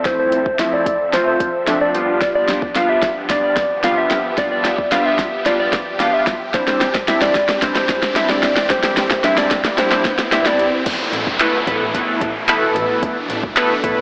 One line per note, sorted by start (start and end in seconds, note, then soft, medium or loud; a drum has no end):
0.00 6.50 F3 medium
0.00 1.90 C4 medium
0.00 1.90 A4 medium
0.00 1.90 E5 medium
0.05 0.39 F3 medium
0.05 0.39 A3 medium
0.05 0.39 C4 medium
0.05 0.39 E4 medium
0.05 0.18 C5 medium
0.05 kick loud
0.05 snare medium
0.05 closed hi-hat medium
0.19 0.61 C5 loud
0.32 closed hi-hat medium
0.46 kick medium
0.59 0.93 F3 medium
0.59 0.93 A3 medium
0.59 0.93 C4 medium
0.59 0.93 E4 loud
0.59 0.73 E5 loud
0.59 snare medium
0.59 closed hi-hat medium
0.73 1.15 D5 loud
0.86 kick medium
0.86 closed hi-hat medium
1.13 1.47 F3 medium
1.13 1.47 A3 medium
1.13 1.47 C4 medium
1.13 1.48 F4 medium
1.13 1.27 C5 medium
1.13 snare medium
1.13 closed hi-hat medium
1.27 1.65 C5 loud
1.40 kick loud
1.40 closed hi-hat medium
1.67 1.94 F3 medium
1.67 1.95 A3 medium
1.67 1.95 C4 medium
1.67 1.94 D4 medium
1.67 1.83 E5 loud
1.67 snare medium
1.67 closed hi-hat loud
1.81 2.21 D5 loud
1.94 2.59 G3 medium
1.94 2.59 B3 medium
1.94 6.50 B3 medium
1.94 2.59 D4 medium
1.94 4.09 D4 medium
1.94 2.60 F4 medium
1.94 10.82 G4 medium
1.94 closed hi-hat medium
2.21 2.28 D5 medium
2.21 kick loud
2.21 snare medium
2.21 closed hi-hat medium
2.21 riser medium
2.35 2.78 D5 loud
2.48 snare medium
2.48 closed hi-hat medium
2.62 kick medium
2.75 3.10 G3 medium
2.75 3.10 B3 medium
2.75 3.10 D4 medium
2.75 3.10 F4 medium
2.75 2.91 F5 loud
2.75 snare medium
2.75 closed hi-hat medium
2.89 3.32 E5 medium
3.02 kick medium
3.02 snare medium
3.02 closed hi-hat medium
3.29 3.64 G3 medium
3.29 3.64 B3 medium
3.29 3.64 D4 medium
3.29 3.64 F4 medium
3.29 3.43 D5 medium
3.29 kick medium
3.29 snare medium
3.29 closed hi-hat medium
3.44 3.86 D5 loud
3.56 kick loud
3.56 snare medium
3.56 closed hi-hat medium
3.83 4.17 G3 medium
3.83 4.18 B3 medium
3.83 4.18 D4 medium
3.83 4.18 F4 medium
3.83 3.99 F5 loud
3.83 snare medium
3.83 closed hi-hat loud
3.98 4.40 E5 loud
4.11 6.51 E5 medium
4.11 snare medium
4.11 closed hi-hat medium
4.37 4.72 G3 medium
4.37 4.72 B3 medium
4.37 4.72 D4 medium
4.37 4.72 F4 medium
4.37 4.51 D5 loud
4.37 kick loud
4.37 snare loud
4.37 closed hi-hat medium
4.52 4.94 D5 loud
4.65 snare medium
4.65 closed hi-hat medium
4.78 kick medium
4.91 5.26 G3 medium
4.91 5.26 B3 medium
4.91 5.26 D4 medium
4.91 5.26 F4 loud
4.91 5.05 F5 medium
4.91 snare loud
4.91 closed hi-hat medium
5.06 5.48 E5 loud
5.19 kick medium
5.19 snare medium
5.19 closed hi-hat medium
5.45 5.80 G3 medium
5.45 5.80 B3 medium
5.45 5.80 D4 medium
5.45 5.80 F4 medium
5.45 5.59 D5 loud
5.45 snare medium
5.45 closed hi-hat loud
5.60 5.97 D5 loud
5.73 kick loud
5.73 snare loud
5.73 closed hi-hat medium
5.99 6.34 G3 medium
5.99 6.34 B3 medium
5.99 6.34 D4 medium
5.99 6.34 F4 medium
5.99 6.15 F5 loud
5.99 snare medium
5.99 closed hi-hat medium
6.14 6.56 E5 loud
6.27 kick loud
6.27 snare loud
6.27 closed hi-hat medium
6.53 10.82 E3 medium
6.53 6.88 G3 medium
6.53 10.82 C4 medium
6.53 6.88 C4 medium
6.53 8.68 D4 medium
6.53 6.88 D4 medium
6.53 6.88 E4 medium
6.53 6.67 C5 medium
6.53 kick loud
6.53 snare loud
6.53 closed hi-hat medium
6.68 7.10 C5 medium
6.68 snare loud
6.81 snare loud
6.81 closed hi-hat medium
6.95 kick medium
6.95 snare loud
7.08 7.42 G3 medium
7.08 7.42 C4 medium
7.08 7.42 D4 medium
7.08 7.42 E4 medium
7.08 7.21 E5 medium
7.08 snare loud
7.08 closed hi-hat medium
7.22 7.64 D5 loud
7.22 snare loud
7.35 kick medium
7.35 snare loud
7.35 closed hi-hat medium
7.49 snare loud
7.62 7.96 G3 medium
7.62 7.96 C4 medium
7.62 7.96 D4 medium
7.62 7.96 E4 medium
7.62 7.75 C5 medium
7.62 kick medium
7.62 snare loud
7.62 closed hi-hat medium
7.76 8.18 C5 loud
7.76 snare loud
7.89 kick loud
7.89 snare loud
7.89 closed hi-hat medium
8.03 snare loud
8.16 8.50 G3 medium
8.16 8.50 C4 medium
8.16 8.50 D4 medium
8.16 8.50 E4 medium
8.16 8.31 E5 loud
8.16 snare loud
8.16 closed hi-hat loud
8.30 8.72 D5 loud
8.30 snare loud
8.43 snare loud
8.43 closed hi-hat medium
8.56 snare loud
8.70 9.04 G3 medium
8.70 9.04 C4 medium
8.70 9.04 D4 medium
8.70 10.84 E4 medium
8.70 9.04 G4 medium
8.70 8.83 C5 medium
8.70 kick loud
8.70 snare loud
8.70 closed hi-hat medium
8.83 9.26 C5 medium
8.83 snare loud
8.97 snare loud
8.97 closed hi-hat medium
9.11 kick medium
9.11 snare loud
9.24 9.58 G3 medium
9.24 9.58 C4 medium
9.24 9.58 D4 medium
9.24 9.58 E4 loud
9.24 9.40 E5 medium
9.24 snare loud
9.24 closed hi-hat medium
9.38 9.80 D5 medium
9.38 snare loud
9.51 kick medium
9.51 snare loud
9.51 closed hi-hat medium
9.65 snare loud
9.78 10.12 G3 medium
9.78 10.12 C4 medium
9.78 10.12 D4 medium
9.78 10.12 E4 medium
9.78 9.92 C5 medium
9.78 snare loud
9.78 closed hi-hat loud
9.91 10.34 C5 medium
9.91 snare loud
10.05 kick loud
10.05 snare loud
10.05 closed hi-hat medium
10.19 snare loud
10.32 10.66 G3 medium
10.32 10.66 C4 medium
10.32 10.66 D4 medium
10.32 10.66 E4 medium
10.32 10.48 E5 loud
10.32 snare loud
10.32 closed hi-hat loud
10.46 10.87 D5 medium
10.46 snare loud
10.59 closed hi-hat medium
10.86 14.01 B2 medium
10.86 14.01 E3 medium
10.86 14.01 A3 medium
10.86 13.00 E4 loud
10.86 kick loud
10.86 closed hi-hat medium
10.86 crash loud
10.86 downlifter medium
11.13 11.21 A1 loud
11.13 closed hi-hat medium
11.27 kick medium
11.40 11.57 A3 loud
11.40 11.57 B3 medium
11.40 11.57 E4 medium
11.40 11.57 A4 medium
11.40 11.58 B4 loud
11.40 clap loud
11.40 closed hi-hat medium
11.67 11.75 A1 medium
11.67 11.84 A3 medium
11.67 11.84 B3 medium
11.67 11.84 E4 medium
11.67 11.85 A4 medium
11.67 11.85 B4 loud
11.67 kick medium
11.67 closed hi-hat medium
11.81 11.89 A2 loud
11.94 12.28 A3 medium
11.94 12.28 B3 medium
11.94 12.28 E4 medium
11.94 12.29 A4 medium
11.94 12.29 B4 medium
11.94 kick medium
11.94 closed hi-hat medium
12.21 12.29 A1 medium
12.21 kick loud
12.21 closed hi-hat medium
12.48 13.16 A3 medium
12.48 13.16 B3 medium
12.48 13.16 E4 medium
12.48 13.16 A4 medium
12.48 13.17 B4 loud
12.48 clap loud
12.48 closed hi-hat medium
12.75 12.83 A1 loud
12.75 closed hi-hat medium
13.03 14.01 D4 medium
13.03 kick loud
13.03 closed hi-hat medium
13.29 13.37 A1 loud
13.29 closed hi-hat medium
13.43 kick medium
13.56 13.74 A3 loud
13.56 13.74 B3 medium
13.56 13.74 E4 medium
13.56 13.74 A4 medium
13.56 13.74 B4 loud
13.56 clap loud
13.56 closed hi-hat medium
13.83 13.92 A1 loud
13.83 14.01 A3 loud
13.83 14.01 B3 medium
13.83 14.01 E4 medium
13.83 14.01 A4 medium
13.83 14.01 B4 loud
13.83 kick medium
13.83 closed hi-hat medium
13.97 14.01 A2 loud